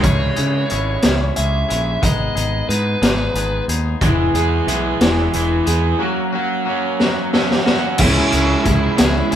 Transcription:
0.03 C#2 G#3 C#4 E4 G#4 C#5, kick, closed hi-hat
0.36 C#3 G#3 C#4 E4 G#4, closed hi-hat
0.70 G#1 G#3 C#4 E4 G#4, closed hi-hat
1.02 C#2 G#3 C#4 E4 G#4, snare, closed hi-hat
1.36 C#2 G#3 C#4 E4 G#4 E5, closed hi-hat
1.69 A#1 G#3 C#4 E4 G#4, closed hi-hat
2.02 G#1 G#3 B3 D#4 G#4 D#5, kick, closed hi-hat
2.35 G#1 G#3 B3 D#4 G#4, closed hi-hat
2.69 G#2 G#3 B3 D#4 G#4 B4, closed hi-hat
3.02 G#1 G#3 B3 D#4 G#4, snare, closed hi-hat
3.34 G#1 G#3 B3 D#4 G#4, closed hi-hat
3.68 D#2 G#3 B3 D#4 G#4, closed hi-hat
4.01 E1 E3 G#3 B3 G#4, kick, closed hi-hat
4.34 E2 E3 G#3 B3 G#4, closed hi-hat
4.67 B1 E3 G#3 B3 E4 G#4, closed hi-hat
5.01 E1 E3 G#3 B3 G#4, snare, closed hi-hat
5.33 E1 E3 G#3 B3 E4 G#4, closed hi-hat
5.66 E2 E3 G#3 B3 G#4, closed hi-hat
5.99 F#3 A#3 C#4 F#4
6.32 F#3 A#3 C#4 F#4
6.65 F#3 A#3 C#4 F#4
6.99 F#3 A#3 C#4 F#4, snare
7.33 F#3 A#3 C#4 F#4, snare
7.51 snare
7.66 F#3 A#3 C#4 F#4, snare
7.98 C#2 C#3 G#3 C#4 E4 G#4 C#5 E5 G#5, kick, crash
8.02 C#4 E6
8.31 C#2 G#3 C#4 E4 G#4, closed hi-hat
8.63 C#2 G#3 C#4 E4 G#4, kick, closed hi-hat
8.68 E4
8.97 C#2 G#3 C#4 E4 G#4, snare, closed hi-hat
9.31 G#3 C#4 E4 G#4, closed hi-hat

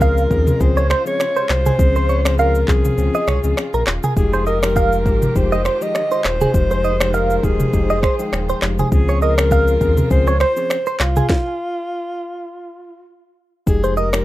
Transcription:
Already playing: C#2 C#3 F3 G#3 C4 C#4 F4 G#4 A#4
0.01 F5, kick, shaker
0.18 shaker
0.30 D#2 F3 C4 C#4 G#4, kick, shaker
0.47 mid tom, shaker
0.60 C#2 F3 C4 C#4 G#4 C5, kick, shaker
0.77 C#5, shaker
0.90 C5, finger snap, cross-stick, shaker
1.06 F3 C4 C#4 G#4 C#5, shaker
1.20 finger snap, cross-stick, shaker
1.36 C5, shaker
1.49 C2 C5, finger snap, cross-stick, clap, shaker
1.66 G#4, mid tom, shaker
1.78 C#2 F3 C4 C#4 G#4, kick, shaker
1.96 C5, shaker
2.09 C#5, shaker
2.25 F3 C4 C#4 G#4, finger snap, cross-stick, shaker
2.38 A#4 F5, shaker
2.55 shaker
2.68 C2 F3 C4 C#4 G#4, kick, clap, shaker
2.85 mid tom, shaker
2.98 C#2 F3 C4 C#4 G#4, shaker
3.14 D#5, shaker
3.27 C2 C#5, finger snap, cross-stick, mid tom, shaker
3.44 C#2 F3 C4 C#4 G#4, shaker
3.57 finger snap, cross-stick, shaker
3.74 A#1 A#4, shaker
3.87 D#1, finger snap, cross-stick, clap, shaker
4.03 G#4, mid tom, shaker
4.16 F1 D#3 F3 G#3 D#4 G4 G#4, kick, shaker
4.33 C5, shaker
4.46 A#4 D#5, shaker
4.62 F3 G#3 D#4 G4, finger snap, cross-stick, shaker
4.76 F5, kick, shaker
4.92 shaker
5.06 G#1 F3 G#3 D#4 G4, kick, shaker
5.22 mid tom, shaker
5.35 F1 F3 G#3 D#4 G4 C5, kick, shaker
5.52 D#5, shaker
5.65 C5, finger snap, cross-stick, shaker
5.81 F3 G#3 D#4 G4 D#5, shaker
5.95 finger snap, cross-stick, shaker
6.11 C5, shaker
6.24 D#1 C5, finger snap, cross-stick, clap, shaker
6.41 G#4, mid tom, shaker
6.54 F1 F3 G#3 D#4 G4 C5, kick, shaker
6.71 C5, shaker
6.84 D#5, shaker
7.00 F3 G#3 D#4 G4, finger snap, cross-stick, shaker
7.14 A#4 F5, shaker
7.30 shaker
7.43 D#1 F3 G#3 D#4 G4 G#4, kick, shaker
7.60 mid tom, shaker
7.73 F1 F3 G#3 D#4 G4, kick, shaker
7.90 D#5, shaker
8.03 C5, finger snap, kick, cross-stick, shaker
8.19 F3 G#3 D#4 G5, shaker
8.32 D#1, finger snap, cross-stick, shaker
8.49 C5, shaker
8.62 F1 F3 G#3 D#4 G4, finger snap, cross-stick, clap, shaker
8.79 G#4, mid tom, shaker
8.91 C#2 C#3 F3 C4 C#4 F4 G#4 C5, kick, shaker
9.09 C#5, shaker
9.22 A#4 D#5, shaker
9.38 F3 C4 C#4 G#4, finger snap, cross-stick, shaker
9.51 F5, kick, shaker
9.68 shaker
9.81 D#2 F3 C4 C#4 G#4, kick, shaker
9.97 mid tom, shaker
10.10 C#2 F3 C4 C#4 G#4 C5, kick, shaker
10.27 C#5, shaker
10.40 C5, finger snap, cross-stick, shaker
10.56 F3 C4 C#4 G#4, shaker
10.70 finger snap, cross-stick, shaker
10.86 C5, shaker
11.00 C2 F4, finger snap, cross-stick, clap, shaker
11.16 G#4, mid tom, shaker
11.29 kick, snare
13.67 F1 F3 G#3 D#4 G4 G#4, kick, shaker
13.84 C5, shaker
13.97 A#4 D#5, shaker
14.13 F3 G#3 D#4 G4, finger snap, cross-stick, shaker

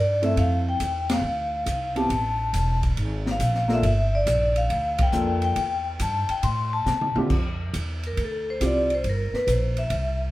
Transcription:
Already playing: G2 D5
0.22 A3 C4 E4 A4 E5, ride
0.37 F2 F5, kick, ride
0.69 G5
0.80 E2, kick, hi-hat pedal, ride
1.10 F5, snare, ride
1.22 D2
1.66 C2, kick, hi-hat pedal, ride
1.95 B3 C4 E4 G4 A5, ride
2.10 A1, kick, ride
2.53 E1, kick, hi-hat pedal, ride
2.83 kick, ride
2.97 G#1, kick, ride
3.26 snare
3.31 F5
3.39 A#1, kick, hi-hat pedal, ride
3.55 snare
3.68 A#3 D4 F4 A4, snare
3.73 E5
3.83 G1, kick, ride
4.15 D5
4.26 A#1, kick, hi-hat pedal, ride
4.56 F5, ride
4.70 D2, kick, ride
4.98 G5, kick, ride
5.12 F2 A#3 D4 F4 A4, hi-hat pedal
5.42 G5, ride
5.56 E2, kick, ride
6.00 G2 A5, kick, hi-hat pedal, ride
6.29 G5, muted upright bass stroke, ride
6.43 A2 C6, kick, ride
6.73 A5
6.86 C3, snare, hi-hat pedal
7.01 mid tom
7.16 D3 C4 E4 F4 G4, muted upright bass stroke, mid tom
7.30 F2, kick, crash
7.73 E2, kick, hi-hat pedal, ride
8.03 A#4, ride
8.17 D2, kick, ride
8.24 A4
8.50 C5
8.61 C2 C4 E4 F4 G4, kick, hi-hat pedal, ride
8.66 D5
8.90 ride
8.95 C5
9.04 G1, kick, ride
9.09 A#4
9.32 B4, muted upright bass stroke, snare
9.47 A#1, kick, hi-hat pedal, ride
9.51 C5
9.77 E5, ride
9.90 C2, kick, ride

